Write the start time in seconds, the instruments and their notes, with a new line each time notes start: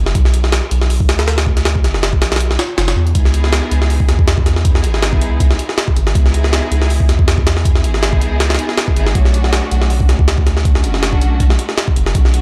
Already playing: sub bass F#1
0.06 snare
0.15 sub bass B1, kick, closed hi-hat
0.25 snare
0.34 closed hi-hat
0.44 snare
0.52 snare, closed hi-hat
0.71 sub bass B1, closed hi-hat
0.81 snare
0.90 open hi-hat
1.00 kick
1.09 sub bass D2, snare, closed hi-hat
1.19 snare, closed hi-hat
1.28 snare, closed hi-hat
1.38 snare, closed hi-hat
1.47 kick
1.57 snare, closed hi-hat
1.65 snare, closed hi-hat
1.75 kick
1.84 sub bass F#1, snare, closed hi-hat
1.94 snare
2.03 snare, closed hi-hat
2.13 kick
2.21 sub bass B1, snare, closed hi-hat
2.32 snare, closed hi-hat
2.36 snare, closed hi-hat
2.40 closed hi-hat
2.51 snare
2.59 snare, closed hi-hat
2.77 sub bass F#1, snare, closed hi-hat
2.88 snare, closed hi-hat
2.96 sub bass E2
3.07 closed hi-hat
3.15 sub bass C#2, string section B3 D#4 E4 G#4, kick, closed hi-hat
3.25 snare
3.34 closed hi-hat
3.44 snare
3.53 snare, closed hi-hat
3.71 sub bass C#2, closed hi-hat
3.82 snare
3.90 open hi-hat
4.00 kick
4.09 sub bass E2, snare, closed hi-hat
4.19 kick
4.28 snare, closed hi-hat
4.38 kick
4.46 snare, closed hi-hat
4.56 snare
4.65 string section B3 D#4 E4 G#4, kick, closed hi-hat
4.75 snare
4.84 sub bass G#1, closed hi-hat
4.94 snare
5.03 snare, closed hi-hat
5.13 kick
5.21 sub bass C#2, closed hi-hat
5.40 kick, closed hi-hat
5.51 snare
5.59 closed hi-hat
5.69 snare
5.78 snare, closed hi-hat
5.88 kick
5.96 sub bass G#1, closed hi-hat
6.07 snare
6.15 sub bass C#2, string section B3 D#4 E4 G#4, kick, closed hi-hat
6.26 snare
6.34 closed hi-hat
6.44 snare
6.53 snare, closed hi-hat
6.71 sub bass C#2, closed hi-hat
6.82 snare
6.90 open hi-hat
7.00 kick
7.09 sub bass E2, snare, closed hi-hat
7.19 kick
7.28 snare, closed hi-hat
7.38 kick
7.47 snare, closed hi-hat
7.57 snare
7.65 string section B3 D#4 E4 G#4, kick, closed hi-hat
7.75 snare
7.84 sub bass G#1, closed hi-hat
7.94 snare
8.03 snare, closed hi-hat
8.13 kick
8.21 sub bass C#2, closed hi-hat
8.40 snare, closed hi-hat
8.50 snare, closed hi-hat
8.55 snare, closed hi-hat
8.59 closed hi-hat
8.69 snare
8.78 snare, closed hi-hat
8.88 kick
8.96 sub bass G#1, string section B3 D#4 E4 G#4, closed hi-hat
9.07 snare
9.15 sub bass B1, string section A3 C#4 D4 F#4, kick, closed hi-hat
9.25 snare
9.34 closed hi-hat
9.44 snare
9.53 snare, closed hi-hat
9.71 sub bass B1, closed hi-hat
9.82 snare
9.90 open hi-hat
10.00 kick
10.09 sub bass D2, snare, closed hi-hat
10.19 kick
10.28 snare, closed hi-hat
10.38 kick
10.47 snare, closed hi-hat
10.57 snare
10.65 string section A3 C#4 D4 F#4, kick, closed hi-hat
10.75 snare
10.84 sub bass F#1, closed hi-hat
10.94 snare
11.03 snare, closed hi-hat
11.13 kick
11.21 sub bass B1, closed hi-hat
11.40 kick, closed hi-hat
11.50 snare
11.59 closed hi-hat
11.69 snare
11.78 snare, closed hi-hat
11.88 kick
11.96 sub bass F#1, closed hi-hat
12.06 snare
12.15 sub bass B1, string section A3 C#4 D4 F#4, kick, closed hi-hat
12.25 snare
12.34 closed hi-hat